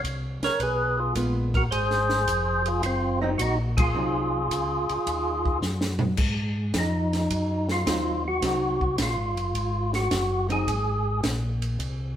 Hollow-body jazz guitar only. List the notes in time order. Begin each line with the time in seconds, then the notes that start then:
1.15 G#3 B3 F4
3.22 F#3 C4 D#4
3.95 F#3 C4 D#4
7.86 F#3 C4 D#4
8.42 F#3 C4 D#4
10.49 F#3 C4 D#4